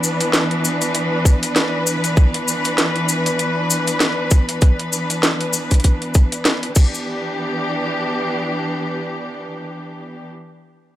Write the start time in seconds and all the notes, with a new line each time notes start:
Already playing: E3 B3 D4 B4
0.03 cabasa
0.21 closed hi-hat, cabasa
0.33 snare, closed hi-hat, cabasa
0.51 closed hi-hat
0.65 cabasa
0.81 closed hi-hat, cabasa
0.95 closed hi-hat, cabasa
1.25 kick, cabasa
1.43 closed hi-hat, cabasa
1.56 snare, closed hi-hat, cabasa
1.87 cabasa
2.04 closed hi-hat, cabasa
2.17 kick, cabasa
2.34 closed hi-hat
2.48 cabasa
2.65 closed hi-hat, cabasa
2.78 snare, closed hi-hat, cabasa
2.96 closed hi-hat
3.09 cabasa
3.26 closed hi-hat, cabasa
3.39 closed hi-hat, cabasa
3.70 cabasa
3.87 closed hi-hat, cabasa
4.00 snare, closed hi-hat, cabasa
4.31 kick, cabasa
4.49 closed hi-hat, cabasa
4.61 kick, closed hi-hat, cabasa
4.79 closed hi-hat
4.93 cabasa
5.10 closed hi-hat, cabasa
5.23 snare, closed hi-hat, cabasa
5.41 closed hi-hat
5.53 cabasa
5.71 kick, closed hi-hat, cabasa
5.74 closed hi-hat
5.80 closed hi-hat
5.84 kick, closed hi-hat, cabasa
6.02 closed hi-hat
6.14 kick, cabasa
6.32 closed hi-hat, cabasa
6.45 snare, closed hi-hat, cabasa
6.63 closed hi-hat
6.75 E3 B3 D4 G4, kick, crash, cabasa
6.94 cabasa